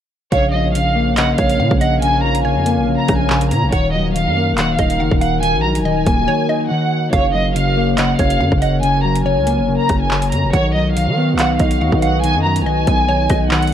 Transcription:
0.32 808-style bass A#1, clean electric guitar C#3, analog synth pad A#3 A#4 C#5 F5, violin section C#5, synth pluck F5, kick, closed hi-hat
0.53 clean electric guitar F3, violin section D#5
0.75 clean electric guitar C#3, violin section F5, closed hi-hat
0.95 clean electric guitar A#3
1.17 clean electric guitar C#3, synth pluck D#5, violin section F#5, clap, closed hi-hat
1.38 808-style bass A#1, clean electric guitar C#4, synth pluck C#5, violin section F5, kick, closed hi-hat
1.49 closed hi-hat
1.59 808-style bass A#2, clean electric guitar C#3, synth pluck F5
1.71 808-style bass A#1, kick
1.81 synth pluck D#5, violin section F#5, closed hi-hat
2.02 clean electric guitar C#3, violin section G#5, closed hi-hat
2.24 clean electric guitar F3, violin section A#5
2.35 closed hi-hat
2.45 clean electric guitar C#3, synth pluck C#5, violin section G#5
2.56 808-style bass F2
2.66 clean electric guitar A#3, closed hi-hat
2.77 808-style bass A#1
2.87 clean electric guitar C#3
2.99 violin section A#5
3.08 808-style bass A#1, clean electric guitar C#4, kick, cross-stick, closed hi-hat
3.20 violin section G#5
3.30 clean electric guitar C#3, clap
3.41 closed hi-hat
3.51 808-style bass A#2, violin section A#5, closed hi-hat
3.63 808-style bass A#1
3.72 808-style bass D#1, clean electric guitar D#3, analog synth pad D#3 D#4 F#4 A#4, violin section C#5, synth pluck F#5, kick, closed hi-hat
3.94 clean electric guitar F#3, violin section D#5
4.15 clean electric guitar D#3, violin section F5, closed hi-hat
4.26 808-style bass F#2
4.36 clean electric guitar A#3
4.53 808-style bass D#1
4.58 clean electric guitar D#3, synth pluck F5, violin section F#5, clap, closed hi-hat
4.79 808-style bass D#1, clean electric guitar D#4, synth pluck D#5, violin section F5, kick, closed hi-hat
4.90 closed hi-hat
5.00 808-style bass F#1, clean electric guitar D#3, synth pluck F#5
5.11 808-style bass D#1, kick
5.21 synth pluck F5, violin section F#5, closed hi-hat
5.43 clean electric guitar D#3, violin section G#5, closed hi-hat
5.54 808-style bass A#1
5.64 clean electric guitar F#3, violin section A#5
5.75 closed hi-hat
5.80 808-style bass D#1
5.85 clean electric guitar D#3, synth pluck D#5, violin section G#5
6.06 808-style bass D#1, clean electric guitar A#3, kick, closed hi-hat
6.28 clean electric guitar D#3, synth pluck C#5
6.49 clean electric guitar D#4, synth pluck D#5
6.71 clean electric guitar D#3, violin section F#5
7.13 808-style bass F#1, clean electric guitar C#3, analog synth pad F#3 A#4 C#5, violin section C#5, synth pluck F5, kick, closed hi-hat
7.34 clean electric guitar F#3, violin section D#5
7.55 clean electric guitar C#3, violin section F5, closed hi-hat
7.77 clean electric guitar A#3
7.98 clean electric guitar C#3, synth pluck D#5, violin section F#5, clap, closed hi-hat
8.19 808-style bass F#1, clean electric guitar C#4, synth pluck C#5, violin section F5, kick, closed hi-hat
8.30 closed hi-hat
8.41 808-style bass F#2, clean electric guitar C#3, synth pluck F5
8.52 808-style bass F#1, kick
8.62 synth pluck D#5, violin section F#5, closed hi-hat
8.83 clean electric guitar C#3, violin section G#5, closed hi-hat
9.04 clean electric guitar F#3, violin section A#5
9.15 closed hi-hat
9.25 clean electric guitar C#3, synth pluck C#5, violin section G#5
9.37 808-style bass C#2
9.46 clean electric guitar A#3, closed hi-hat
9.58 808-style bass F#1
9.68 clean electric guitar C#3
9.80 violin section A#5
9.89 808-style bass F#1, clean electric guitar C#4, kick, cross-stick, closed hi-hat
10.01 violin section G#5
10.11 clean electric guitar C#3, clap
10.22 closed hi-hat
10.32 808-style bass F#2, violin section A#5, closed hi-hat
10.44 808-style bass F#1
10.53 808-style bass B1, clean electric guitar D#3, analog synth pad B3 F#4 B4 D#5, violin section C#5, synth pluck F#5, kick, closed hi-hat
10.75 clean electric guitar F#3, violin section D#5
10.96 clean electric guitar D#3, violin section F5, closed hi-hat
11.07 808-style bass D#3
11.17 clean electric guitar B3
11.34 808-style bass B1
11.39 clean electric guitar D#3, synth pluck F5, violin section F#5, clap, closed hi-hat
11.59 808-style bass B1, clean electric guitar D#4, synth pluck D#5, violin section F5, kick, closed hi-hat
11.71 closed hi-hat
11.81 808-style bass D#2, clean electric guitar D#3, synth pluck F#5
11.92 808-style bass B1, kick
12.02 synth pluck F5, violin section F#5, closed hi-hat
12.23 clean electric guitar D#3, violin section G#5, closed hi-hat
12.35 808-style bass F#2
12.45 clean electric guitar F#3, violin section A#5
12.56 closed hi-hat
12.61 808-style bass B1
12.66 clean electric guitar D#3, synth pluck D#5, violin section G#5
12.87 808-style bass B1, clean electric guitar B3, kick, closed hi-hat
13.09 clean electric guitar D#3, synth pluck C#5
13.30 808-style bass B1, clean electric guitar D#4, synth pluck D#5, kick, cross-stick, closed hi-hat
13.51 clean electric guitar D#3, violin section F#5, clap
13.62 closed hi-hat
13.67 closed hi-hat

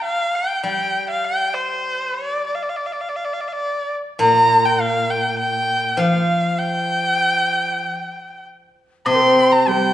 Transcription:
0.04 erhu F5
0.35 erhu G5
0.63 guzheng G3, erhu G5
1.10 erhu F5
1.25 erhu G5
1.54 erhu C5
2.14 erhu D5
2.47 erhu D5
2.55 erhu F5
2.63 erhu D5
2.69 erhu F5
2.77 erhu D5
2.86 erhu F5
2.92 erhu D5
3.01 erhu F5
3.09 erhu D5
3.16 erhu F5
3.25 erhu D5
3.33 erhu F5
3.40 erhu D5
3.48 erhu F5
3.53 erhu D5
4.19 guzheng A#2, erhu A#5
4.65 erhu G5
4.81 erhu F5
5.10 erhu G5
5.39 erhu G5
5.97 guzheng F3, erhu F5
6.59 erhu G5
9.06 guzheng C3, cello C4, xiao C5, erhu C6, high woodblock
9.15 xiao A#4
9.22 xiao C5
9.52 erhu A#5
9.67 cello G3, erhu G5
9.71 xiao G4

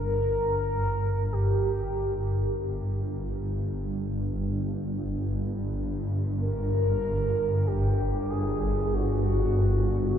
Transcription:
Already playing: synth drone G1 G2
0.03 soft synth lead A#4
1.33 soft synth lead G4
6.40 soft synth lead A#4
7.67 soft synth lead G4
8.30 soft synth lead G#4
8.94 soft synth lead F#4

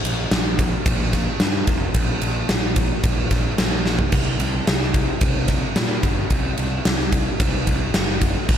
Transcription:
0.04 picked electric bass A#1, ride
0.31 picked electric bass A#1, snare, ride
0.59 kick, ride
0.86 picked electric bass A#1, kick, ride
1.13 kick, snare, ride
1.40 picked electric bass G2, snare, ride
1.67 picked electric bass F1, kick, ride
1.94 picked electric bass A#1, kick, ride
2.22 picked electric bass A#1, ride
2.49 picked electric bass A#1, snare, ride
2.76 kick, ride
3.04 picked electric bass A#1, kick, ride
3.31 picked electric bass A#1, kick, snare, ride
3.58 picked electric bass A#1, snare, ride
3.86 snare
3.99 floor tom
4.12 picked electric bass C2, kick, crash
4.40 picked electric bass C2, ride
4.67 picked electric bass C2, snare, ride
4.94 kick, ride
5.21 picked electric bass C2, kick, ride
5.48 kick, snare, ride
5.76 picked electric bass A#2, snare, ride
6.03 picked electric bass G1, kick, ride
6.30 picked electric bass C2, kick, ride
6.57 picked electric bass C2, ride
6.85 picked electric bass C2, snare, ride
6.99 snare
7.12 kick, ride
7.40 picked electric bass C2, kick, ride
7.67 picked electric bass C2, kick, ride
7.94 picked electric bass F#1, snare, ride
8.21 kick, ride
8.49 picked electric bass G1, kick, crash

